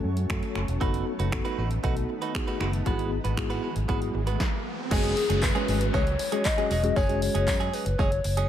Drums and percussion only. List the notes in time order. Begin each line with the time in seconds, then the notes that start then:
0.17 closed hi-hat
0.30 finger snap, kick, closed hi-hat
0.43 closed hi-hat
0.55 finger snap
0.68 closed hi-hat
0.81 kick, closed hi-hat
0.94 closed hi-hat
1.20 closed hi-hat
1.32 finger snap, kick, closed hi-hat
1.45 closed hi-hat
1.71 closed hi-hat
1.84 kick, closed hi-hat
1.97 closed hi-hat
2.22 closed hi-hat
2.35 finger snap, kick, closed hi-hat
2.48 closed hi-hat
2.61 finger snap
2.73 closed hi-hat
2.86 kick, closed hi-hat
2.99 closed hi-hat
3.25 closed hi-hat
3.37 finger snap, kick, closed hi-hat
3.50 closed hi-hat
3.76 closed hi-hat
3.89 kick, closed hi-hat
4.02 closed hi-hat
4.27 closed hi-hat
4.40 kick, snare
4.91 kick, crash, tambourine
5.04 closed hi-hat
5.17 open hi-hat
5.30 closed hi-hat
5.42 kick, clap, tambourine
5.56 closed hi-hat
5.68 open hi-hat, tambourine
5.81 closed hi-hat
5.94 kick, tambourine
6.07 closed hi-hat
6.19 open hi-hat, tambourine
6.32 closed hi-hat
6.45 kick, clap, tambourine
6.58 closed hi-hat
6.71 open hi-hat, tambourine
6.84 closed hi-hat
6.96 kick, tambourine
7.09 closed hi-hat
7.22 open hi-hat, tambourine
7.35 closed hi-hat
7.48 kick, clap, tambourine
7.61 closed hi-hat
7.73 open hi-hat, tambourine
7.86 closed hi-hat
7.99 kick, tambourine
8.12 closed hi-hat
8.24 open hi-hat, tambourine
8.37 closed hi-hat